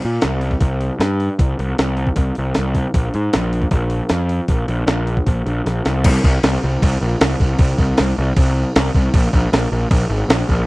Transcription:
0.02 A#2, open hi-hat
0.22 C2, snare, open hi-hat
0.41 open hi-hat
0.51 kick
0.61 C2, kick, open hi-hat
0.81 open hi-hat
0.99 G2, snare, open hi-hat
1.20 open hi-hat
1.39 C2, kick, open hi-hat
1.59 C2, open hi-hat
1.78 C2, snare, open hi-hat
1.97 open hi-hat
2.07 kick
2.16 C2, kick, open hi-hat
2.35 C2, open hi-hat
2.54 C2, snare, open hi-hat
2.75 kick, open hi-hat
2.94 A#1, kick, open hi-hat
3.14 G#2, open hi-hat
3.33 A#1, snare, open hi-hat
3.53 open hi-hat
3.62 kick
3.71 A#1, kick, open hi-hat
3.90 open hi-hat
4.09 F2, snare, open hi-hat
4.29 open hi-hat
4.48 A#1, kick, open hi-hat
4.68 A#1, open hi-hat
4.87 A#1, snare, open hi-hat
5.07 open hi-hat
5.17 kick
5.27 A#1, kick, open hi-hat
5.46 A#1, open hi-hat
5.66 A#1, snare, open hi-hat
5.85 C2, snare, open hi-hat
6.04 C2, kick, crash
6.24 C2, kick
6.43 C2, snare, crash
6.64 C2
6.82 C2, kick, crash
7.01 A#1
7.21 C2, snare, crash
7.40 C2, kick
7.59 C2, kick, crash
7.78 C2, kick
7.97 C2, snare, crash
8.18 C2
8.36 C2, kick, crash
8.76 C2, snare, crash
8.94 C2, kick
9.14 A#1, kick, crash
9.33 A#1, kick
9.53 A#1, snare, crash
9.72 A#1
9.91 A#1, kick, crash
10.09 G#1
10.29 A#1, snare, crash
10.49 A#1, kick

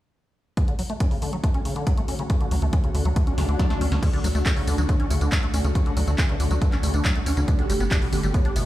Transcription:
0.57 C#3, kick, closed hi-hat
0.68 D3, closed hi-hat
0.79 F#3, open hi-hat
0.90 A3, closed hi-hat
1.00 C#4, kick, closed hi-hat
1.11 C#3, open hi-hat
1.22 D3, open hi-hat
1.33 F#3, closed hi-hat
1.44 A3, kick, closed hi-hat
1.54 C#4, closed hi-hat
1.65 C#3, open hi-hat
1.76 D3, closed hi-hat
1.87 F#3, kick, closed hi-hat
1.98 A3, closed hi-hat
2.08 C#4, open hi-hat
2.19 C#3, closed hi-hat
2.30 C#3, kick, closed hi-hat
2.41 D3, closed hi-hat
2.51 D2 F#3, open hi-hat
2.62 D2 A3, closed hi-hat
2.73 C#4, kick, closed hi-hat
2.84 C#3, closed hi-hat
2.95 D2 D3, open hi-hat
3.05 D2 F#3, closed hi-hat
3.16 A3, kick, closed hi-hat, swell
3.27 C#4, closed hi-hat
3.38 D2 C#3, snare, open hi-hat
3.49 D2 D3, closed hi-hat
3.59 F#3, kick, snare, closed hi-hat
3.70 A3, snare, closed hi-hat
3.81 D2 C#4, open hi-hat
3.92 D2 C#3, snare, closed hi-hat
4.03 C#3 D5, kick, closed hi-hat, crash, tambourine
4.13 D3 D4, closed hi-hat
4.24 D2 F#3 D4, open hi-hat, tambourine
4.35 D2 A3 D4, closed hi-hat, tambourine
4.46 C#4 C#5, kick, clap, closed hi-hat, tambourine
4.56 C#3 D4, open hi-hat
4.67 D2 D3 D4, open hi-hat, tambourine
4.78 D2 F#3 D4, closed hi-hat, tambourine
4.88 A3 C#5, kick, closed hi-hat, tambourine
4.99 C#4 D4, closed hi-hat
5.10 D2 C#3 E5, open hi-hat, tambourine
5.21 D2 D3 D4, closed hi-hat, tambourine
5.32 F#3, kick, clap, closed hi-hat, tambourine
5.43 A3 F#5, closed hi-hat
5.54 D2 C#4 D4, open hi-hat, tambourine
5.64 D2 C#3 D4, closed hi-hat, tambourine
5.75 C#3 C#5, kick, closed hi-hat, tambourine
5.86 D3 D4, closed hi-hat
5.97 D2 F#3 D4, open hi-hat, tambourine
6.08 D2 A3 D4, closed hi-hat, tambourine
6.18 C#4 B4, kick, clap, closed hi-hat, tambourine
6.29 C#3 D4, closed hi-hat
6.40 D2 D3 D4, open hi-hat, tambourine
6.51 D2 F#3 D4, closed hi-hat, tambourine
6.61 A3 B4, kick, closed hi-hat, tambourine
6.72 C#4 D4, clap, closed hi-hat
6.83 D2 C#3 D5, open hi-hat, tambourine
6.94 D2 D3 D4, closed hi-hat, tambourine
7.05 F#3 D4, kick, clap, closed hi-hat
7.15 A3 F#5, closed hi-hat
7.26 D2 C#4 D4, open hi-hat, tambourine
7.37 D2 C#3 D4, closed hi-hat, tambourine
7.48 B2 D5, kick, closed hi-hat, tambourine
7.59 D3 G4, closed hi-hat
7.69 G1 G3 G4, open hi-hat, tambourine
7.80 G1 B3 G4, closed hi-hat, tambourine
7.91 D4 D5, kick, clap, closed hi-hat, tambourine
8.02 B2 G4, open hi-hat
8.13 G1 D3 G4, open hi-hat, tambourine
8.23 G1 G3 G4, closed hi-hat, tambourine
8.34 B3 C#5, kick, closed hi-hat, tambourine
8.45 D4 G4, closed hi-hat
8.56 G1 B2 E5, open hi-hat, tambourine

